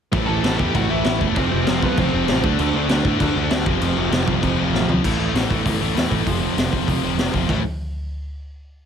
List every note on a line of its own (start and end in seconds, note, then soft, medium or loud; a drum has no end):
0.12 0.24 A1 loud
0.12 0.58 A2 medium
0.12 0.28 A2 medium
0.12 0.58 E3 medium
0.12 0.27 E3 loud
0.12 0.60 A3 medium
0.12 0.27 A3 loud
0.12 0.58 C#4 loud
0.12 0.57 E4 medium
0.12 kick loud
0.12 crash medium
0.27 0.39 A1 medium
0.27 0.43 A2 medium
0.27 0.44 E3 medium
0.27 0.45 A3 medium
0.27 0.57 A4 medium
0.27 0.58 A5 loud
0.44 0.55 A1 medium
0.44 0.60 A2 loud
0.44 0.59 E3 loud
0.44 0.59 A3 loud
0.44 snare loud
0.44 crash medium
0.58 0.71 E2 medium
0.58 0.74 A2 medium
0.58 1.04 A2 medium
0.58 0.75 E3 medium
0.58 1.05 E3 medium
0.58 0.76 A3 medium
0.58 1.07 A3 medium
0.58 1.04 C#4 medium
0.58 1.04 E4 medium
0.58 0.74 G4 medium
0.58 0.74 G5 medium
0.58 kick medium
0.74 0.86 A1 loud
0.74 0.90 A2 loud
0.74 0.90 E3 medium
0.74 0.89 A3 loud
0.74 0.89 F#4 medium
0.74 0.90 F#5 loud
0.74 kick medium
0.74 crash medium
0.90 1.02 A1 medium
0.90 1.03 A2 medium
0.90 1.05 E3 medium
0.90 1.06 A3 loud
0.90 1.19 E4 medium
0.90 1.19 E5 loud
1.05 1.17 A1 loud
1.05 1.21 A2 medium
1.05 1.35 A2 medium
1.05 1.21 E3 medium
1.05 1.35 E3 medium
1.05 1.21 A3 loud
1.05 1.38 A3 medium
1.05 1.36 C#4 medium
1.05 snare loud
1.05 crash medium
1.09 1.37 E4 medium
1.20 1.32 E1 medium
1.20 1.36 A2 medium
1.20 1.36 E3 medium
1.20 2.44 A3 medium
1.20 kick medium
1.36 1.47 F1 medium
1.36 1.52 F2 medium
1.36 1.51 C3 loud
1.36 1.81 F3 loud
1.36 1.50 F3 medium
1.36 1.84 A3 medium
1.36 1.79 C4 medium
1.36 1.82 C4 loud
1.36 1.79 C5 medium
1.36 kick loud
1.36 crash medium
1.40 1.80 F4 loud
1.51 1.64 F1 medium
1.51 1.66 F2 medium
1.51 1.68 C3 medium
1.51 1.68 F3 loud
1.67 1.79 F1 medium
1.67 1.83 F2 loud
1.67 1.82 C3 medium
1.67 1.81 F3 loud
1.67 snare loud
1.67 crash medium
1.81 1.93 C2 medium
1.81 1.96 F2 medium
1.81 1.97 C3 medium
1.81 1.97 F3 medium
1.81 2.26 F3 medium
1.81 2.29 A3 medium
1.81 1.97 B3 soft
1.81 2.28 C4 medium
1.81 2.27 F4 medium
1.81 1.97 B4 medium
1.81 kick medium
1.97 2.09 F1 loud
1.97 2.14 F2 loud
1.97 2.13 C3 loud
1.97 2.12 F3 loud
1.97 2.41 C4 medium
1.97 2.42 C5 medium
1.97 kick medium
1.97 crash medium
2.13 2.25 F1 medium
2.13 2.28 F2 medium
2.13 2.29 C3 medium
2.13 2.29 F3 loud
2.28 2.40 A1 medium
2.28 2.43 F2 loud
2.28 2.43 C3 loud
2.28 2.43 F3 medium
2.28 2.44 F3 loud
2.28 2.44 A3 medium
2.28 2.44 C4 medium
2.28 2.44 F4 medium
2.28 snare loud
2.28 crash medium
2.43 2.55 D2 medium
2.43 2.88 D3 medium
2.43 2.60 D3 loud
2.43 2.60 A3 loud
2.43 2.90 A3 medium
2.43 2.59 D4 loud
2.43 2.90 D4 medium
2.43 2.90 F#4 loud
2.43 kick loud
2.59 2.71 D2 loud
2.59 2.75 D3 medium
2.59 2.76 A3 medium
2.59 2.76 D4 loud
2.59 crash medium
2.74 2.85 D2 medium
2.74 2.91 D3 medium
2.74 2.92 A3 medium
2.74 2.89 D4 loud
2.88 3.00 D2 medium
2.88 3.34 D3 medium
2.88 3.37 A3 medium
2.88 3.07 A3 loud
2.88 3.07 D4 loud
2.88 3.35 D4 medium
2.88 snare loud
2.88 crash medium
2.92 3.06 D3 medium
2.92 3.34 F#4 medium
3.05 3.16 A2 medium
3.05 3.22 D3 medium
3.05 3.22 A3 loud
3.05 3.20 D4 loud
3.05 kick medium
3.20 3.31 D2 loud
3.20 3.35 D3 medium
3.20 3.36 A3 medium
3.20 3.37 D4 loud
3.20 kick medium
3.20 crash medium
3.35 3.47 D2 medium
3.35 3.51 D3 medium
3.35 3.65 D3 medium
3.35 3.51 A3 loud
3.35 3.66 A3 medium
3.35 3.66 D4 medium
3.35 3.50 D4 loud
3.35 3.65 F#4 medium
3.51 3.62 D2 loud
3.51 3.66 D3 medium
3.51 3.67 A3 medium
3.51 3.66 D4 loud
3.51 snare loud
3.51 crash medium
3.65 3.77 F1 loud
3.65 3.82 F2 loud
3.65 3.81 C3 loud
3.65 4.10 F3 medium
3.65 3.80 F3 loud
3.65 4.12 A3 medium
3.65 4.12 C4 loud
3.65 4.13 F4 loud
3.65 kick loud
3.81 3.92 F1 loud
3.81 3.95 F2 medium
3.81 3.96 C3 medium
3.81 3.96 F3 loud
3.81 crash medium
3.96 4.08 F1 medium
3.96 4.12 F2 medium
3.96 4.11 C3 loud
3.96 4.10 F3 medium
4.11 4.23 F1 medium
4.11 4.26 F2 medium
4.11 4.26 C3 loud
4.11 4.27 F3 loud
4.11 4.57 F3 medium
4.11 4.58 A3 medium
4.11 4.58 C4 medium
4.11 4.58 F4 medium
4.11 snare loud
4.11 crash medium
4.27 4.39 C2 medium
4.27 4.42 F2 medium
4.27 4.41 C3 medium
4.27 4.41 F3 loud
4.27 kick medium
4.42 4.54 F1 medium
4.42 4.56 F2 medium
4.42 4.56 C3 loud
4.42 4.58 F3 loud
4.42 kick loud
4.42 crash medium
4.57 4.70 F1 medium
4.57 4.73 F2 medium
4.57 4.72 C3 medium
4.57 4.72 F3 loud
4.57 4.89 C4 medium
4.57 4.88 F4 medium
4.61 4.90 F3 medium
4.61 4.89 A3 medium
4.73 4.84 A1 medium
4.73 4.87 F2 medium
4.73 4.88 C3 medium
4.73 4.88 F3 loud
4.73 snare medium
4.88 5.00 C2 medium
4.88 5.03 F2 medium
4.88 5.03 C3 medium
4.88 5.03 F3 loud
4.88 floor tom medium
5.03 5.14 A1 medium
5.03 5.19 A2 medium
5.03 5.19 E3 loud
5.03 5.18 A3 loud
5.03 kick loud
5.03 crash loud
5.19 5.29 A1 medium
5.19 5.33 A2 medium
5.19 5.34 E3 medium
5.19 5.36 A3 medium
5.34 5.44 A1 medium
5.34 5.49 A2 medium
5.34 5.49 E3 loud
5.34 5.49 A3 loud
5.34 snare loud
5.34 open hi-hat medium
5.49 5.60 A1 medium
5.49 5.63 A2 medium
5.49 5.64 E3 medium
5.49 5.66 A3 medium
5.49 kick medium
5.64 5.75 A1 loud
5.64 5.81 A2 medium
5.64 5.81 E3 medium
5.64 5.81 A3 loud
5.64 kick medium
5.64 open hi-hat medium
5.81 5.91 A1 medium
5.81 5.93 A2 medium
5.81 5.94 E3 medium
5.81 5.95 A3 loud
5.94 6.06 E2 medium
5.94 6.10 A2 medium
5.94 6.09 E3 medium
5.94 6.09 A3 medium
5.94 snare loud
5.94 open hi-hat medium
6.10 6.21 A1 medium
6.10 6.26 A2 medium
6.10 6.25 E3 medium
6.10 7.50 A3 loud
6.10 kick medium
6.26 6.46 F1 medium
6.26 6.41 F2 medium
6.26 6.40 C3 medium
6.26 6.40 F3 loud
6.26 kick loud
6.26 open hi-hat medium
6.41 6.56 F2 medium
6.41 6.56 C3 medium
6.41 6.57 F3 medium
6.57 6.67 F1 medium
6.57 6.72 F2 medium
6.57 6.71 C3 loud
6.57 6.71 F3 loud
6.57 snare loud
6.57 open hi-hat medium
6.72 6.83 F1 medium
6.72 6.86 F2 medium
6.72 6.86 C3 medium
6.72 6.87 F3 medium
6.72 kick medium
6.87 6.98 F1 medium
6.87 7.03 F2 medium
6.87 7.03 C3 medium
6.87 7.02 F3 medium
6.87 kick medium
6.87 open hi-hat soft
7.03 7.13 F1 medium
7.03 7.17 F2 medium
7.03 7.18 C3 medium
7.03 7.18 F3 medium
7.17 7.28 F1 medium
7.17 7.34 F2 medium
7.17 7.33 C3 medium
7.17 7.32 F3 medium
7.17 snare loud
7.17 open hi-hat medium
7.34 7.44 F1 medium
7.34 7.49 F2 medium
7.34 7.48 C3 medium
7.34 7.48 F3 medium
7.34 kick medium
7.48 7.63 A1 medium
7.48 7.61 A2 medium
7.48 7.62 E3 medium
7.48 7.62 A3 loud
7.48 kick medium
7.48 floor tom medium
7.48 china medium